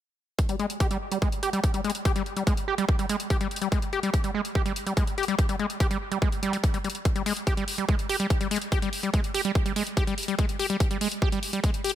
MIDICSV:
0, 0, Header, 1, 3, 480
1, 0, Start_track
1, 0, Tempo, 416667
1, 445, Time_signature, 4, 2, 24, 8
1, 13766, End_track
2, 0, Start_track
2, 0, Title_t, "Acid bass"
2, 0, Program_c, 0, 38
2, 565, Note_on_c, 0, 55, 80
2, 645, Note_off_c, 0, 55, 0
2, 685, Note_on_c, 0, 56, 94
2, 765, Note_off_c, 0, 56, 0
2, 925, Note_on_c, 0, 67, 100
2, 1005, Note_off_c, 0, 67, 0
2, 1045, Note_on_c, 0, 55, 101
2, 1125, Note_off_c, 0, 55, 0
2, 1285, Note_on_c, 0, 55, 76
2, 1365, Note_off_c, 0, 55, 0
2, 1405, Note_on_c, 0, 56, 103
2, 1484, Note_off_c, 0, 56, 0
2, 1645, Note_on_c, 0, 67, 99
2, 1724, Note_off_c, 0, 67, 0
2, 1765, Note_on_c, 0, 55, 99
2, 1844, Note_off_c, 0, 55, 0
2, 2005, Note_on_c, 0, 55, 78
2, 2084, Note_off_c, 0, 55, 0
2, 2125, Note_on_c, 0, 56, 97
2, 2204, Note_off_c, 0, 56, 0
2, 2365, Note_on_c, 0, 67, 101
2, 2445, Note_off_c, 0, 67, 0
2, 2485, Note_on_c, 0, 55, 101
2, 2564, Note_off_c, 0, 55, 0
2, 2725, Note_on_c, 0, 55, 77
2, 2805, Note_off_c, 0, 55, 0
2, 2844, Note_on_c, 0, 56, 98
2, 2924, Note_off_c, 0, 56, 0
2, 3085, Note_on_c, 0, 67, 108
2, 3164, Note_off_c, 0, 67, 0
2, 3205, Note_on_c, 0, 55, 101
2, 3284, Note_off_c, 0, 55, 0
2, 3445, Note_on_c, 0, 55, 76
2, 3525, Note_off_c, 0, 55, 0
2, 3565, Note_on_c, 0, 56, 95
2, 3644, Note_off_c, 0, 56, 0
2, 3806, Note_on_c, 0, 67, 102
2, 3885, Note_off_c, 0, 67, 0
2, 3925, Note_on_c, 0, 55, 103
2, 4005, Note_off_c, 0, 55, 0
2, 4165, Note_on_c, 0, 55, 75
2, 4245, Note_off_c, 0, 55, 0
2, 4285, Note_on_c, 0, 56, 98
2, 4365, Note_off_c, 0, 56, 0
2, 4525, Note_on_c, 0, 67, 96
2, 4604, Note_off_c, 0, 67, 0
2, 4645, Note_on_c, 0, 55, 104
2, 4725, Note_off_c, 0, 55, 0
2, 4885, Note_on_c, 0, 55, 77
2, 4964, Note_off_c, 0, 55, 0
2, 5005, Note_on_c, 0, 56, 103
2, 5084, Note_off_c, 0, 56, 0
2, 5245, Note_on_c, 0, 67, 103
2, 5324, Note_off_c, 0, 67, 0
2, 5365, Note_on_c, 0, 55, 100
2, 5444, Note_off_c, 0, 55, 0
2, 5605, Note_on_c, 0, 55, 72
2, 5684, Note_off_c, 0, 55, 0
2, 5725, Note_on_c, 0, 56, 98
2, 5804, Note_off_c, 0, 56, 0
2, 5965, Note_on_c, 0, 67, 100
2, 6045, Note_off_c, 0, 67, 0
2, 6085, Note_on_c, 0, 55, 98
2, 6165, Note_off_c, 0, 55, 0
2, 6325, Note_on_c, 0, 55, 80
2, 6405, Note_off_c, 0, 55, 0
2, 6445, Note_on_c, 0, 56, 95
2, 6524, Note_off_c, 0, 56, 0
2, 6685, Note_on_c, 0, 67, 99
2, 6764, Note_off_c, 0, 67, 0
2, 6805, Note_on_c, 0, 55, 100
2, 6884, Note_off_c, 0, 55, 0
2, 7045, Note_on_c, 0, 55, 76
2, 7125, Note_off_c, 0, 55, 0
2, 7165, Note_on_c, 0, 56, 104
2, 7244, Note_off_c, 0, 56, 0
2, 7404, Note_on_c, 0, 55, 99
2, 7519, Note_off_c, 0, 55, 0
2, 7524, Note_on_c, 0, 55, 75
2, 7572, Note_off_c, 0, 55, 0
2, 7764, Note_on_c, 0, 55, 78
2, 7812, Note_off_c, 0, 55, 0
2, 7884, Note_on_c, 0, 55, 72
2, 7932, Note_off_c, 0, 55, 0
2, 8244, Note_on_c, 0, 55, 78
2, 8324, Note_off_c, 0, 55, 0
2, 8364, Note_on_c, 0, 56, 94
2, 8444, Note_off_c, 0, 56, 0
2, 8604, Note_on_c, 0, 67, 100
2, 8684, Note_off_c, 0, 67, 0
2, 8724, Note_on_c, 0, 55, 98
2, 8804, Note_off_c, 0, 55, 0
2, 8965, Note_on_c, 0, 55, 77
2, 9044, Note_off_c, 0, 55, 0
2, 9084, Note_on_c, 0, 56, 101
2, 9164, Note_off_c, 0, 56, 0
2, 9325, Note_on_c, 0, 67, 98
2, 9404, Note_off_c, 0, 67, 0
2, 9445, Note_on_c, 0, 55, 99
2, 9524, Note_off_c, 0, 55, 0
2, 9685, Note_on_c, 0, 55, 77
2, 9764, Note_off_c, 0, 55, 0
2, 9804, Note_on_c, 0, 56, 99
2, 9884, Note_off_c, 0, 56, 0
2, 10045, Note_on_c, 0, 67, 100
2, 10124, Note_off_c, 0, 67, 0
2, 10165, Note_on_c, 0, 55, 105
2, 10244, Note_off_c, 0, 55, 0
2, 10405, Note_on_c, 0, 55, 77
2, 10484, Note_off_c, 0, 55, 0
2, 10524, Note_on_c, 0, 56, 102
2, 10604, Note_off_c, 0, 56, 0
2, 10765, Note_on_c, 0, 67, 103
2, 10844, Note_off_c, 0, 67, 0
2, 10885, Note_on_c, 0, 55, 100
2, 10964, Note_off_c, 0, 55, 0
2, 11125, Note_on_c, 0, 55, 77
2, 11204, Note_off_c, 0, 55, 0
2, 11245, Note_on_c, 0, 56, 99
2, 11324, Note_off_c, 0, 56, 0
2, 11485, Note_on_c, 0, 67, 101
2, 11564, Note_off_c, 0, 67, 0
2, 11605, Note_on_c, 0, 55, 103
2, 11684, Note_off_c, 0, 55, 0
2, 11845, Note_on_c, 0, 55, 75
2, 11924, Note_off_c, 0, 55, 0
2, 11965, Note_on_c, 0, 56, 100
2, 12044, Note_off_c, 0, 56, 0
2, 12205, Note_on_c, 0, 67, 97
2, 12284, Note_off_c, 0, 67, 0
2, 12325, Note_on_c, 0, 55, 102
2, 12404, Note_off_c, 0, 55, 0
2, 12565, Note_on_c, 0, 55, 76
2, 12645, Note_off_c, 0, 55, 0
2, 12685, Note_on_c, 0, 56, 105
2, 12764, Note_off_c, 0, 56, 0
2, 12925, Note_on_c, 0, 67, 105
2, 13004, Note_off_c, 0, 67, 0
2, 13045, Note_on_c, 0, 55, 105
2, 13124, Note_off_c, 0, 55, 0
2, 13285, Note_on_c, 0, 55, 72
2, 13364, Note_off_c, 0, 55, 0
2, 13404, Note_on_c, 0, 56, 100
2, 13484, Note_off_c, 0, 56, 0
2, 13644, Note_on_c, 0, 67, 102
2, 13724, Note_off_c, 0, 67, 0
2, 13766, End_track
3, 0, Start_track
3, 0, Title_t, "Drums"
3, 445, Note_on_c, 9, 36, 115
3, 445, Note_on_c, 9, 42, 78
3, 560, Note_off_c, 9, 36, 0
3, 560, Note_off_c, 9, 42, 0
3, 565, Note_on_c, 9, 42, 54
3, 680, Note_off_c, 9, 42, 0
3, 685, Note_on_c, 9, 42, 36
3, 800, Note_off_c, 9, 42, 0
3, 805, Note_on_c, 9, 42, 52
3, 921, Note_off_c, 9, 42, 0
3, 925, Note_on_c, 9, 36, 114
3, 925, Note_on_c, 9, 42, 80
3, 1040, Note_off_c, 9, 36, 0
3, 1040, Note_off_c, 9, 42, 0
3, 1045, Note_on_c, 9, 42, 55
3, 1160, Note_off_c, 9, 42, 0
3, 1285, Note_on_c, 9, 42, 53
3, 1400, Note_off_c, 9, 42, 0
3, 1405, Note_on_c, 9, 36, 116
3, 1405, Note_on_c, 9, 42, 36
3, 1520, Note_off_c, 9, 36, 0
3, 1520, Note_off_c, 9, 42, 0
3, 1525, Note_on_c, 9, 42, 53
3, 1640, Note_off_c, 9, 42, 0
3, 1645, Note_on_c, 9, 42, 81
3, 1760, Note_off_c, 9, 42, 0
3, 1765, Note_on_c, 9, 42, 53
3, 1880, Note_off_c, 9, 42, 0
3, 1885, Note_on_c, 9, 36, 114
3, 1885, Note_on_c, 9, 42, 79
3, 2000, Note_off_c, 9, 36, 0
3, 2000, Note_off_c, 9, 42, 0
3, 2005, Note_on_c, 9, 42, 55
3, 2120, Note_off_c, 9, 42, 0
3, 2125, Note_on_c, 9, 42, 47
3, 2185, Note_off_c, 9, 42, 0
3, 2185, Note_on_c, 9, 42, 62
3, 2245, Note_off_c, 9, 42, 0
3, 2245, Note_on_c, 9, 42, 53
3, 2360, Note_off_c, 9, 42, 0
3, 2365, Note_on_c, 9, 36, 122
3, 2365, Note_on_c, 9, 42, 78
3, 2480, Note_off_c, 9, 36, 0
3, 2480, Note_off_c, 9, 42, 0
3, 2485, Note_on_c, 9, 42, 51
3, 2600, Note_off_c, 9, 42, 0
3, 2605, Note_on_c, 9, 42, 36
3, 2720, Note_off_c, 9, 42, 0
3, 2725, Note_on_c, 9, 42, 50
3, 2840, Note_off_c, 9, 42, 0
3, 2845, Note_on_c, 9, 36, 117
3, 2845, Note_on_c, 9, 42, 77
3, 2960, Note_off_c, 9, 36, 0
3, 2960, Note_off_c, 9, 42, 0
3, 2965, Note_on_c, 9, 42, 51
3, 3080, Note_off_c, 9, 42, 0
3, 3205, Note_on_c, 9, 42, 53
3, 3320, Note_off_c, 9, 42, 0
3, 3324, Note_on_c, 9, 36, 124
3, 3325, Note_on_c, 9, 42, 35
3, 3440, Note_off_c, 9, 36, 0
3, 3440, Note_off_c, 9, 42, 0
3, 3445, Note_on_c, 9, 42, 52
3, 3560, Note_off_c, 9, 42, 0
3, 3565, Note_on_c, 9, 42, 77
3, 3680, Note_off_c, 9, 42, 0
3, 3685, Note_on_c, 9, 42, 54
3, 3800, Note_off_c, 9, 42, 0
3, 3804, Note_on_c, 9, 36, 123
3, 3805, Note_on_c, 9, 42, 76
3, 3920, Note_off_c, 9, 36, 0
3, 3920, Note_off_c, 9, 42, 0
3, 3925, Note_on_c, 9, 42, 52
3, 4040, Note_off_c, 9, 42, 0
3, 4045, Note_on_c, 9, 42, 47
3, 4105, Note_off_c, 9, 42, 0
3, 4105, Note_on_c, 9, 42, 62
3, 4165, Note_off_c, 9, 42, 0
3, 4165, Note_on_c, 9, 42, 51
3, 4280, Note_off_c, 9, 42, 0
3, 4285, Note_on_c, 9, 36, 120
3, 4285, Note_on_c, 9, 42, 74
3, 4400, Note_off_c, 9, 36, 0
3, 4400, Note_off_c, 9, 42, 0
3, 4405, Note_on_c, 9, 42, 51
3, 4520, Note_off_c, 9, 42, 0
3, 4525, Note_on_c, 9, 42, 35
3, 4640, Note_off_c, 9, 42, 0
3, 4645, Note_on_c, 9, 42, 48
3, 4760, Note_off_c, 9, 42, 0
3, 4765, Note_on_c, 9, 36, 120
3, 4765, Note_on_c, 9, 42, 75
3, 4880, Note_off_c, 9, 36, 0
3, 4880, Note_off_c, 9, 42, 0
3, 4885, Note_on_c, 9, 42, 51
3, 5000, Note_off_c, 9, 42, 0
3, 5125, Note_on_c, 9, 42, 49
3, 5240, Note_off_c, 9, 42, 0
3, 5245, Note_on_c, 9, 36, 122
3, 5245, Note_on_c, 9, 42, 34
3, 5360, Note_off_c, 9, 36, 0
3, 5360, Note_off_c, 9, 42, 0
3, 5365, Note_on_c, 9, 42, 50
3, 5480, Note_off_c, 9, 42, 0
3, 5485, Note_on_c, 9, 42, 75
3, 5600, Note_off_c, 9, 42, 0
3, 5605, Note_on_c, 9, 42, 51
3, 5720, Note_off_c, 9, 42, 0
3, 5725, Note_on_c, 9, 36, 126
3, 5725, Note_on_c, 9, 42, 75
3, 5840, Note_off_c, 9, 36, 0
3, 5840, Note_off_c, 9, 42, 0
3, 5845, Note_on_c, 9, 42, 52
3, 5960, Note_off_c, 9, 42, 0
3, 5965, Note_on_c, 9, 42, 45
3, 6025, Note_off_c, 9, 42, 0
3, 6025, Note_on_c, 9, 42, 59
3, 6085, Note_off_c, 9, 42, 0
3, 6085, Note_on_c, 9, 42, 49
3, 6201, Note_off_c, 9, 42, 0
3, 6205, Note_on_c, 9, 36, 120
3, 6205, Note_on_c, 9, 42, 74
3, 6320, Note_off_c, 9, 36, 0
3, 6321, Note_off_c, 9, 42, 0
3, 6326, Note_on_c, 9, 42, 51
3, 6441, Note_off_c, 9, 42, 0
3, 6445, Note_on_c, 9, 42, 32
3, 6561, Note_off_c, 9, 42, 0
3, 6565, Note_on_c, 9, 42, 47
3, 6681, Note_off_c, 9, 42, 0
3, 6685, Note_on_c, 9, 36, 119
3, 6685, Note_on_c, 9, 42, 73
3, 6800, Note_off_c, 9, 36, 0
3, 6800, Note_off_c, 9, 42, 0
3, 6805, Note_on_c, 9, 42, 49
3, 6921, Note_off_c, 9, 42, 0
3, 7045, Note_on_c, 9, 42, 49
3, 7160, Note_off_c, 9, 42, 0
3, 7165, Note_on_c, 9, 36, 122
3, 7165, Note_on_c, 9, 42, 33
3, 7280, Note_off_c, 9, 36, 0
3, 7280, Note_off_c, 9, 42, 0
3, 7285, Note_on_c, 9, 42, 46
3, 7400, Note_off_c, 9, 42, 0
3, 7405, Note_on_c, 9, 42, 75
3, 7520, Note_off_c, 9, 42, 0
3, 7525, Note_on_c, 9, 42, 51
3, 7640, Note_off_c, 9, 42, 0
3, 7645, Note_on_c, 9, 36, 122
3, 7645, Note_on_c, 9, 42, 73
3, 7760, Note_off_c, 9, 36, 0
3, 7760, Note_off_c, 9, 42, 0
3, 7765, Note_on_c, 9, 42, 50
3, 7880, Note_off_c, 9, 42, 0
3, 7885, Note_on_c, 9, 42, 45
3, 7945, Note_off_c, 9, 42, 0
3, 7945, Note_on_c, 9, 42, 58
3, 8005, Note_off_c, 9, 42, 0
3, 8005, Note_on_c, 9, 42, 49
3, 8120, Note_off_c, 9, 42, 0
3, 8124, Note_on_c, 9, 36, 116
3, 8125, Note_on_c, 9, 42, 73
3, 8240, Note_off_c, 9, 36, 0
3, 8240, Note_off_c, 9, 42, 0
3, 8245, Note_on_c, 9, 42, 50
3, 8360, Note_off_c, 9, 42, 0
3, 8365, Note_on_c, 9, 46, 101
3, 8480, Note_off_c, 9, 46, 0
3, 8485, Note_on_c, 9, 42, 49
3, 8600, Note_off_c, 9, 42, 0
3, 8605, Note_on_c, 9, 36, 114
3, 8605, Note_on_c, 9, 42, 72
3, 8720, Note_off_c, 9, 36, 0
3, 8720, Note_off_c, 9, 42, 0
3, 8725, Note_on_c, 9, 42, 48
3, 8840, Note_off_c, 9, 42, 0
3, 8845, Note_on_c, 9, 46, 92
3, 8960, Note_off_c, 9, 46, 0
3, 8965, Note_on_c, 9, 42, 49
3, 9080, Note_off_c, 9, 42, 0
3, 9085, Note_on_c, 9, 36, 115
3, 9085, Note_on_c, 9, 42, 34
3, 9200, Note_off_c, 9, 36, 0
3, 9200, Note_off_c, 9, 42, 0
3, 9205, Note_on_c, 9, 42, 47
3, 9320, Note_off_c, 9, 42, 0
3, 9325, Note_on_c, 9, 46, 105
3, 9440, Note_off_c, 9, 46, 0
3, 9445, Note_on_c, 9, 42, 51
3, 9560, Note_off_c, 9, 42, 0
3, 9565, Note_on_c, 9, 36, 117
3, 9565, Note_on_c, 9, 42, 75
3, 9680, Note_off_c, 9, 36, 0
3, 9680, Note_off_c, 9, 42, 0
3, 9685, Note_on_c, 9, 42, 51
3, 9800, Note_off_c, 9, 42, 0
3, 9805, Note_on_c, 9, 46, 87
3, 9865, Note_on_c, 9, 42, 59
3, 9920, Note_off_c, 9, 46, 0
3, 9925, Note_off_c, 9, 42, 0
3, 9925, Note_on_c, 9, 42, 50
3, 10040, Note_off_c, 9, 42, 0
3, 10045, Note_on_c, 9, 36, 111
3, 10045, Note_on_c, 9, 42, 78
3, 10160, Note_off_c, 9, 36, 0
3, 10160, Note_off_c, 9, 42, 0
3, 10165, Note_on_c, 9, 42, 52
3, 10280, Note_off_c, 9, 42, 0
3, 10285, Note_on_c, 9, 46, 96
3, 10400, Note_off_c, 9, 46, 0
3, 10405, Note_on_c, 9, 42, 50
3, 10521, Note_off_c, 9, 42, 0
3, 10525, Note_on_c, 9, 36, 111
3, 10525, Note_on_c, 9, 42, 74
3, 10640, Note_off_c, 9, 36, 0
3, 10640, Note_off_c, 9, 42, 0
3, 10645, Note_on_c, 9, 42, 52
3, 10761, Note_off_c, 9, 42, 0
3, 10765, Note_on_c, 9, 46, 86
3, 10880, Note_off_c, 9, 46, 0
3, 10885, Note_on_c, 9, 42, 51
3, 11001, Note_off_c, 9, 42, 0
3, 11005, Note_on_c, 9, 36, 115
3, 11005, Note_on_c, 9, 42, 36
3, 11120, Note_off_c, 9, 36, 0
3, 11120, Note_off_c, 9, 42, 0
3, 11125, Note_on_c, 9, 42, 50
3, 11241, Note_off_c, 9, 42, 0
3, 11245, Note_on_c, 9, 46, 99
3, 11360, Note_off_c, 9, 46, 0
3, 11365, Note_on_c, 9, 42, 52
3, 11481, Note_off_c, 9, 42, 0
3, 11485, Note_on_c, 9, 36, 112
3, 11486, Note_on_c, 9, 42, 78
3, 11600, Note_off_c, 9, 36, 0
3, 11601, Note_off_c, 9, 42, 0
3, 11605, Note_on_c, 9, 42, 51
3, 11720, Note_off_c, 9, 42, 0
3, 11725, Note_on_c, 9, 46, 84
3, 11785, Note_on_c, 9, 42, 61
3, 11840, Note_off_c, 9, 46, 0
3, 11845, Note_off_c, 9, 42, 0
3, 11845, Note_on_c, 9, 42, 51
3, 11960, Note_off_c, 9, 42, 0
3, 11965, Note_on_c, 9, 36, 110
3, 11965, Note_on_c, 9, 42, 82
3, 12080, Note_off_c, 9, 36, 0
3, 12080, Note_off_c, 9, 42, 0
3, 12085, Note_on_c, 9, 42, 53
3, 12200, Note_off_c, 9, 42, 0
3, 12205, Note_on_c, 9, 46, 94
3, 12320, Note_off_c, 9, 46, 0
3, 12325, Note_on_c, 9, 42, 51
3, 12440, Note_off_c, 9, 42, 0
3, 12445, Note_on_c, 9, 36, 113
3, 12445, Note_on_c, 9, 42, 79
3, 12560, Note_off_c, 9, 36, 0
3, 12560, Note_off_c, 9, 42, 0
3, 12565, Note_on_c, 9, 42, 53
3, 12680, Note_off_c, 9, 42, 0
3, 12685, Note_on_c, 9, 46, 86
3, 12800, Note_off_c, 9, 46, 0
3, 12805, Note_on_c, 9, 42, 54
3, 12920, Note_off_c, 9, 42, 0
3, 12925, Note_on_c, 9, 36, 113
3, 12925, Note_on_c, 9, 42, 36
3, 13040, Note_off_c, 9, 36, 0
3, 13040, Note_off_c, 9, 42, 0
3, 13045, Note_on_c, 9, 42, 53
3, 13160, Note_off_c, 9, 42, 0
3, 13165, Note_on_c, 9, 46, 101
3, 13280, Note_off_c, 9, 46, 0
3, 13285, Note_on_c, 9, 42, 55
3, 13400, Note_off_c, 9, 42, 0
3, 13405, Note_on_c, 9, 36, 109
3, 13405, Note_on_c, 9, 42, 80
3, 13520, Note_off_c, 9, 36, 0
3, 13520, Note_off_c, 9, 42, 0
3, 13525, Note_on_c, 9, 42, 53
3, 13640, Note_off_c, 9, 42, 0
3, 13645, Note_on_c, 9, 46, 85
3, 13705, Note_on_c, 9, 42, 63
3, 13760, Note_off_c, 9, 46, 0
3, 13766, Note_off_c, 9, 42, 0
3, 13766, End_track
0, 0, End_of_file